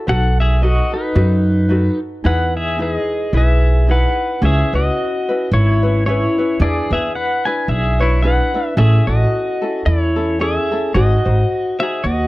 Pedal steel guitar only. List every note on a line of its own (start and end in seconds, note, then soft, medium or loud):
0.09 0.38 A4 medium
0.09 0.40 F#5 loud
0.40 0.63 G#4 medium
0.40 0.64 E5 medium
0.63 0.92 F#4 medium
0.63 0.95 D#5 medium
0.94 1.99 D#4 medium
0.94 1.98 B4 medium
2.26 2.55 B4 medium
2.26 2.56 F#5 medium
2.57 2.79 G#4 medium
2.57 2.81 E5 medium
2.82 3.32 G#4 medium
2.82 2.93 E5 medium
2.93 3.37 D#5 medium
3.37 4.17 G#4 medium
3.37 4.17 E5 medium
3.91 4.41 B4 medium
3.91 4.45 F#5 medium
4.45 4.73 G#4 medium
4.45 4.76 E5 medium
4.75 5.49 F#4 medium
4.75 5.53 D#5 medium
5.54 6.03 E4 medium
5.54 6.05 C#5 medium
6.06 6.57 E4 medium
6.06 6.61 C#5 medium
6.62 6.91 G#4 medium
6.62 6.93 D5 medium
6.93 7.15 G#4 medium
6.93 7.15 E5 medium
7.15 7.44 B4 medium
7.15 7.47 F#5 medium
7.45 7.68 B4 medium
7.45 7.70 G#5 medium
7.69 7.99 G#4 medium
7.69 8.01 E5 medium
8.01 8.23 E4 medium
8.01 8.24 C#5 medium
8.22 8.74 B4 medium
8.22 8.66 F#5 medium
8.66 8.78 E5 medium
8.78 9.07 G#4 medium
8.78 9.06 E5 medium
9.07 9.83 F#4 medium
9.07 9.86 D#5 medium
9.86 10.38 E4 medium
9.86 10.42 C#5 medium
10.41 10.92 G#4 medium
10.41 10.97 E5 medium
10.94 11.77 F#4 medium
10.94 11.82 D#5 medium
11.80 12.03 G#4 medium
11.80 12.04 E5 medium
12.04 12.27 F#4 medium
12.04 12.27 D#5 medium